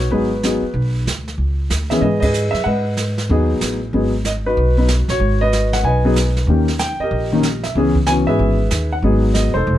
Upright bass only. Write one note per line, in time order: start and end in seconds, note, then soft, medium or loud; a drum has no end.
0.11 0.59 G#1 medium
0.62 muted upright bass stroke soft
0.74 1.04 B1 medium
1.06 1.36 D2 medium
1.38 1.68 C#2 medium
1.70 2.00 D2 medium
2.01 2.50 G#2 medium
2.53 2.65 F#2 medium
2.65 3.26 G#2 medium
3.29 3.59 D#2 medium
3.60 3.90 A1 medium
3.93 4.54 G#1 medium
4.57 5.05 B1 medium
5.08 5.19 A#1 medium
5.20 5.81 G#1 medium
5.83 6.44 B1 medium
6.47 6.96 D#2 medium
6.99 muted upright bass stroke soft
7.11 7.72 A#1 medium
7.75 8.24 C#2 medium
8.27 8.38 G#2 medium
8.39 8.69 G#1 medium
8.71 9.01 D#2 medium
9.02 9.51 G#1 medium
9.54 9.66 E1 medium
9.67 9.78 F1 medium